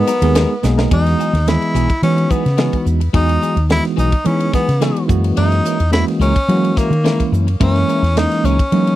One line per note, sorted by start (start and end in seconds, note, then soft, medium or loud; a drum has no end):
0.00 0.10 B3 medium
0.00 0.79 B3 loud
0.00 0.10 D#4 medium
0.00 0.10 G#4 medium
0.07 0.25 F#3 medium
0.07 0.25 B3 medium
0.07 0.25 D#4 medium
0.07 0.25 A#4 medium
0.07 hi-hat pedal medium
0.07 ride medium
0.22 0.44 D#2 medium
0.22 0.53 G#3 medium
0.22 0.53 B3 medium
0.22 0.53 D#4 medium
0.22 0.53 G#4 medium
0.22 0.53 A#4 medium
0.22 ride medium
0.35 0.50 F#3 medium
0.35 0.49 B3 medium
0.35 0.49 D#4 medium
0.35 0.49 A#4 medium
0.35 snare loud
0.35 hi-hat pedal medium
0.35 ride medium
0.50 muted clean electric guitar stroke soft
0.63 0.86 B1 medium
0.63 0.90 G#3 medium
0.63 0.91 A#3 medium
0.63 0.90 B3 medium
0.63 0.91 D#4 medium
0.63 0.91 G#4 medium
0.63 muted clean electric guitar stroke soft
0.63 snare medium
0.63 hi-hat pedal medium
0.78 0.90 B3 medium
0.78 0.90 D#4 medium
0.78 0.91 A#4 medium
0.78 snare medium
0.91 1.14 E2 medium
0.91 1.33 E3 medium
0.91 1.08 F#3 medium
0.91 1.33 G#3 medium
0.91 1.09 B3 medium
0.91 1.33 B3 medium
0.91 1.09 D#4 medium
0.91 1.33 D#4 medium
0.91 1.50 D#4 medium
0.91 1.33 F#4 medium
0.91 1.09 G#4 medium
0.91 kick loud
0.91 ride medium
1.06 snare soft
1.06 ride medium
1.19 1.34 F#3 soft
1.19 1.33 B3 medium
1.19 1.33 D#4 medium
1.19 1.33 G#4 medium
1.19 hi-hat pedal medium
1.33 1.56 D#2 medium
1.33 muted clean electric guitar stroke soft
1.33 snare soft
1.33 ride medium
1.47 1.89 E3 medium
1.47 1.89 G#3 medium
1.47 1.89 B3 medium
1.47 2.03 E4 medium
1.47 1.89 G#4 medium
1.47 1.89 D#5 medium
1.47 muted clean electric guitar stroke soft
1.47 snare medium
1.47 ride medium
1.62 muted clean electric guitar stroke soft
1.62 ride medium
1.74 1.86 B1 medium
1.74 1.89 F#3 medium
1.74 1.89 B3 medium
1.74 1.89 D#4 medium
1.74 1.88 G#4 medium
1.74 hi-hat pedal medium
1.90 muted clean electric guitar stroke soft
1.90 kick medium
1.90 ride medium
2.02 2.44 E3 medium
2.02 2.25 E3 medium
2.02 2.44 G#3 medium
2.02 2.44 B3 medium
2.02 2.32 C#4 medium
2.02 2.44 D#4 medium
2.02 2.44 F#4 medium
2.02 ride medium
2.17 muted clean electric guitar stroke soft
2.17 ride medium
2.30 2.45 F#3 soft
2.30 2.44 B3 soft
2.30 2.86 B3 medium
2.30 2.44 D#4 medium
2.30 2.44 G#4 medium
2.30 kick medium
2.30 hi-hat pedal medium
2.45 2.68 C#3 medium
2.45 muted clean electric guitar stroke soft
2.45 snare soft
2.45 ride medium
2.57 3.00 E3 medium
2.57 2.75 F#3 medium
2.57 3.00 G#3 medium
2.57 2.75 B3 medium
2.57 3.00 B3 medium
2.57 2.76 D#4 medium
2.57 3.00 D#4 medium
2.57 3.00 F#4 medium
2.57 2.76 G#4 medium
2.57 snare medium
2.57 ride medium
2.73 kick medium
2.73 ride medium
2.85 3.09 E2 medium
2.85 muted clean electric guitar stroke soft
2.85 hi-hat pedal medium
3.00 muted clean electric guitar stroke soft
3.00 ride medium
3.13 3.36 E2 medium
3.13 3.55 E3 medium
3.13 3.31 F#3 medium
3.13 3.55 G#3 medium
3.13 3.55 B3 medium
3.13 3.31 B3 medium
3.13 3.56 D#4 medium
3.13 3.32 D#4 medium
3.13 3.67 D#4 loud
3.13 3.56 F#4 medium
3.13 3.32 G#4 medium
3.13 kick loud
3.13 ride medium
3.29 ride medium
3.41 3.57 F#3 medium
3.41 3.56 B3 medium
3.41 3.56 D#4 medium
3.41 3.55 G#4 medium
3.41 hi-hat pedal medium
3.56 3.79 D#2 medium
3.56 ride medium
3.69 4.11 E3 medium
3.69 4.12 G#3 medium
3.69 4.12 B3 medium
3.69 4.12 D#4 medium
3.69 3.84 E4 loud
3.69 4.12 F#4 medium
3.69 muted clean electric guitar stroke soft
3.69 snare loud
3.69 ride medium
3.84 muted clean electric guitar stroke soft
3.84 snare soft
3.84 ride medium
3.96 4.10 B1 medium
3.96 4.12 F#3 medium
3.96 4.11 B3 medium
3.96 4.11 D#4 medium
3.96 4.28 D#4 medium
3.96 4.10 G#4 medium
3.96 hi-hat pedal medium
4.11 muted clean electric guitar stroke soft
4.11 muted fretless electric bass stroke soft
4.11 kick medium
4.11 ride medium
4.25 4.67 E3 medium
4.25 4.48 E3 medium
4.25 4.67 G#3 medium
4.25 4.67 B3 medium
4.25 4.54 C#4 medium
4.25 4.67 D#4 medium
4.25 4.67 G#4 medium
4.25 ride medium
4.40 muted clean electric guitar stroke soft
4.40 ride medium
4.53 4.68 F#3 soft
4.53 4.68 B3 soft
4.53 5.06 B3 medium
4.53 4.68 D#4 medium
4.53 4.68 G#4 medium
4.53 kick medium
4.53 snare soft
4.53 hi-hat pedal medium
4.69 4.91 C#3 medium
4.69 muted clean electric guitar stroke soft
4.69 snare soft
4.69 ride medium
4.81 5.07 E3 medium
4.81 4.99 F#3 medium
4.81 5.07 G#3 medium
4.81 5.09 B3 medium
4.81 4.99 B3 medium
4.81 5.09 D#4 medium
4.81 4.99 D#4 medium
4.81 5.08 F#4 medium
4.81 4.99 G#4 medium
4.81 snare loud
4.81 ride medium
4.96 ride medium
5.08 5.32 F#2 medium
5.08 5.76 E3 medium
5.08 5.77 G#3 medium
5.08 5.77 A#3 medium
5.08 5.77 C#4 medium
5.08 5.77 F#4 medium
5.08 muted clean electric guitar stroke soft
5.08 kick medium
5.08 hi-hat pedal medium
5.24 muted clean electric guitar stroke soft
5.24 ride medium
5.37 5.60 F#2 medium
5.37 5.55 G#3 medium
5.37 5.55 C#4 medium
5.37 5.89 D#4 loud
5.37 5.55 E4 medium
5.37 5.55 A#4 medium
5.37 ride medium
5.52 snare soft
5.52 ride soft
5.65 5.80 G#3 medium
5.65 5.79 C#4 medium
5.65 5.79 E4 medium
5.65 5.78 A#4 medium
5.65 hi-hat pedal medium
5.80 6.02 E2 medium
5.80 muted clean electric guitar stroke soft
5.80 ride medium
5.91 6.34 E3 medium
5.91 6.34 G#3 medium
5.91 6.34 A#3 medium
5.91 6.34 C#4 medium
5.91 6.05 E4 medium
5.91 6.34 F#4 medium
5.91 muted clean electric guitar stroke soft
5.91 snare medium
5.91 ride medium
6.08 muted clean electric guitar stroke soft
6.08 snare soft
6.08 ride medium
6.20 6.32 C#2 medium
6.20 6.36 G#3 medium
6.20 6.35 C#4 medium
6.20 6.79 C#4 medium
6.20 6.35 E4 medium
6.20 6.34 A#4 medium
6.20 hi-hat pedal medium
6.36 muted clean electric guitar stroke soft
6.36 kick medium
6.36 ride medium
6.48 6.90 E3 medium
6.48 6.71 F#3 medium
6.48 6.90 G#3 medium
6.48 6.90 A#3 medium
6.48 6.90 C#4 medium
6.48 6.91 F#4 medium
6.48 ride medium
6.63 muted clean electric guitar stroke soft
6.63 ride medium
6.76 6.91 G#3 soft
6.76 7.33 A#3 medium
6.76 6.91 C#4 medium
6.76 6.91 E4 medium
6.76 6.90 A#4 medium
6.76 kick medium
6.76 snare soft
6.76 hi-hat pedal medium
6.90 7.13 D#3 medium
6.90 muted clean electric guitar stroke soft
6.90 ride medium
7.04 7.46 E3 medium
7.04 7.46 G#3 medium
7.04 7.22 G#3 medium
7.04 7.46 A#3 medium
7.04 7.46 C#4 medium
7.04 7.22 C#4 medium
7.04 7.46 E4 medium
7.04 7.22 E4 medium
7.04 7.22 A#4 medium
7.04 snare medium
7.04 ride medium
7.20 kick medium
7.20 ride medium
7.32 7.55 F#2 medium
7.32 muted clean electric guitar stroke soft
7.32 hi-hat pedal medium
7.47 muted clean electric guitar stroke soft
7.47 ride medium
7.60 7.83 F#2 medium
7.60 8.02 E3 medium
7.60 7.78 G#3 medium
7.60 8.02 G#3 medium
7.60 8.02 A#3 medium
7.60 7.78 C#4 medium
7.60 8.02 C#4 medium
7.60 8.20 C#4 medium
7.60 8.02 E4 medium
7.60 7.78 E4 medium
7.60 7.78 A#4 medium
7.60 kick loud
7.60 ride medium
7.76 snare soft
7.76 ride soft
7.88 8.03 G#3 soft
7.88 8.03 C#4 medium
7.88 8.03 E4 medium
7.88 8.03 A#4 medium
7.88 hi-hat pedal medium
8.02 8.25 E2 medium
8.02 muted clean electric guitar stroke soft
8.02 snare soft
8.02 ride medium
8.16 8.58 E3 medium
8.16 8.58 G#3 medium
8.16 8.58 A#3 medium
8.16 8.58 C#4 medium
8.16 8.58 D#4 medium
8.16 8.47 D#4 medium
8.16 muted clean electric guitar stroke soft
8.16 snare medium
8.16 ride medium
8.32 muted clean electric guitar stroke soft
8.32 snare soft
8.32 ride medium
8.44 8.56 C#2 medium
8.44 8.59 G#3 medium
8.44 8.59 C#4 medium
8.44 8.96 C#4 medium
8.44 8.59 E4 medium
8.44 8.59 A#4 medium
8.44 hi-hat pedal medium
8.59 muted fretless electric bass stroke soft
8.59 muted clean electric guitar stroke soft
8.59 kick medium
8.59 ride medium
8.72 8.96 E3 medium
8.72 8.94 F#3 medium
8.72 8.96 G#3 medium
8.72 8.96 A#3 medium
8.72 8.96 C#4 medium
8.72 8.96 D#4 medium
8.72 ride medium
8.87 muted clean electric guitar stroke soft
8.87 ride medium